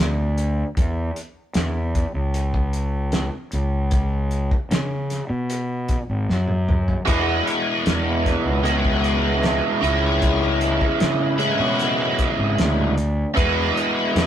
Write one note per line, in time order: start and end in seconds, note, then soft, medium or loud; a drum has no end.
0.00 0.62 D2 medium
0.38 closed hi-hat medium
0.77 1.10 E2 medium
0.77 kick loud
0.77 closed hi-hat medium
1.16 closed hi-hat medium
1.54 2.04 E2 medium
1.54 snare loud
1.54 closed hi-hat medium
1.95 kick medium
1.95 closed hi-hat medium
2.14 3.28 C#2 medium
2.34 closed hi-hat medium
2.54 kick medium
2.73 closed hi-hat medium
3.12 snare medium
3.12 closed hi-hat medium
3.52 4.50 C#2 medium
3.52 closed hi-hat medium
3.91 kick medium
3.91 closed hi-hat medium
4.31 closed hi-hat medium
4.51 kick medium
4.71 5.19 C#3 medium
4.71 snare loud
4.71 closed hi-hat medium
5.10 snare soft
5.10 closed hi-hat medium
5.30 5.95 B2 medium
5.50 closed hi-hat medium
5.89 kick medium
5.89 closed hi-hat medium
6.09 6.25 G#1 medium
6.29 6.94 F#2 medium
6.29 snare soft
6.48 high tom soft
6.69 mid tom medium
6.88 floor tom medium
7.06 8.62 E2 medium
7.06 7.40 E2 medium
7.06 8.62 B2 medium
7.06 8.64 E3 medium
7.06 8.64 G#3 medium
7.06 8.63 B3 medium
7.06 8.65 E4 medium
7.06 kick loud
7.06 closed hi-hat medium
7.06 splash medium
7.47 closed hi-hat medium
7.86 8.35 E2 medium
7.86 snare loud
7.86 closed hi-hat medium
8.26 kick medium
8.26 snare soft
8.26 closed hi-hat soft
8.45 9.59 C#2 medium
8.64 9.80 E2 medium
8.64 9.80 B2 medium
8.64 9.81 E3 medium
8.64 9.82 G#3 medium
8.64 9.81 B3 medium
8.64 9.83 E4 medium
8.64 closed hi-hat medium
8.85 kick medium
9.04 closed hi-hat soft
9.43 snare medium
9.43 closed hi-hat medium
9.81 10.80 C#2 medium
9.81 11.37 C#3 medium
9.81 11.40 E3 medium
9.81 11.39 G#3 medium
9.81 11.38 C#4 medium
9.81 11.38 E4 medium
9.81 closed hi-hat medium
10.22 kick loud
10.22 closed hi-hat medium
10.61 closed hi-hat medium
10.81 kick medium
11.00 11.49 C#3 medium
11.00 snare loud
11.00 closed hi-hat medium
11.38 12.96 C#3 medium
11.38 12.95 E3 medium
11.38 12.95 G#3 medium
11.38 12.95 C#4 medium
11.38 12.94 E4 medium
11.38 closed hi-hat medium
11.59 12.24 B2 medium
11.79 closed hi-hat medium
12.19 kick medium
12.19 closed hi-hat medium
12.38 12.55 G#1 medium
12.58 13.23 D2 medium
12.58 snare medium
12.58 closed hi-hat medium
12.97 closed hi-hat medium
13.34 14.27 E2 medium
13.34 13.69 E2 medium
13.34 14.27 B2 medium
13.34 14.27 E3 medium
13.34 14.27 G#3 medium
13.34 14.27 B3 medium
13.34 14.27 E4 medium
13.34 kick loud
13.34 closed hi-hat medium
13.77 closed hi-hat medium
14.15 14.27 E2 medium
14.15 snare loud
14.15 closed hi-hat medium